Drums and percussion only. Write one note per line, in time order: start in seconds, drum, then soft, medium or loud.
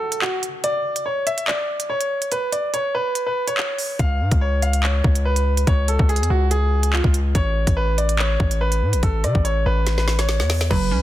0.12 closed hi-hat medium
0.22 clap loud
0.43 closed hi-hat medium
0.64 closed hi-hat medium
0.96 closed hi-hat medium
1.27 closed hi-hat medium
1.38 closed hi-hat medium
1.48 clap loud
1.80 closed hi-hat medium
2.01 closed hi-hat medium
2.22 closed hi-hat medium
2.32 closed hi-hat medium
2.53 closed hi-hat medium
2.74 closed hi-hat medium
3.15 closed hi-hat medium
3.48 closed hi-hat medium
3.58 clap loud
3.78 open hi-hat medium
3.99 kick loud
3.99 closed hi-hat medium
4.32 kick medium
4.32 closed hi-hat medium
4.62 closed hi-hat medium
4.73 closed hi-hat medium
4.83 clap loud
5.04 kick loud
5.15 closed hi-hat medium
5.36 closed hi-hat medium
5.57 closed hi-hat medium
5.67 kick loud
5.67 closed hi-hat medium
5.88 closed hi-hat medium
5.99 kick medium
6.09 closed hi-hat soft
6.16 closed hi-hat medium
6.23 closed hi-hat medium
6.51 closed hi-hat medium
6.83 closed hi-hat medium
6.93 clap loud
7.04 kick medium
7.14 closed hi-hat medium
7.35 kick loud
7.35 closed hi-hat medium
7.67 kick medium
7.67 closed hi-hat medium
7.98 closed hi-hat medium
8.09 closed hi-hat medium
8.19 clap loud
8.40 kick loud
8.51 closed hi-hat medium
8.72 closed hi-hat medium
8.93 closed hi-hat medium
9.03 kick loud
9.03 closed hi-hat medium
9.24 cross-stick medium
9.24 closed hi-hat medium
9.35 kick medium
9.45 closed hi-hat medium
9.87 snare medium
9.87 closed hi-hat medium
9.98 snare medium
10.08 snare medium
10.19 snare medium
10.19 closed hi-hat medium
10.29 snare medium
10.40 snare medium
10.50 snare loud
10.50 open hi-hat medium
10.61 snare loud
10.71 kick loud
10.71 crash medium